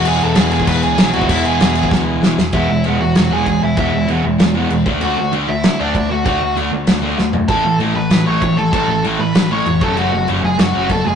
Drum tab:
CC |x-x-x-x-x-x-x-x-|x-x-x-x---------|x---x---x---x---|x---x---x---x---|
SD |----o-------o---|----o---o---o-o-|--------o-------|--------o-------|
FT |----------------|----------------|----------------|----------------|
BD |-------oo------o|o------oo-------|o-----------o---|o-------------o-|

CC |x---x---x---x---|x---x---x-------|x---x---x---x---|x---x---x---x---|
SD |--------o-------|--------o---o---|--------o-------|--------o-------|
FT |----------------|--------------o-|----------------|----------------|
BD |------------o---|o---------------|o-----------o---|o-------------o-|

CC |x---x---x---x---|
SD |--------o-------|
FT |----------------|
BD |------------o---|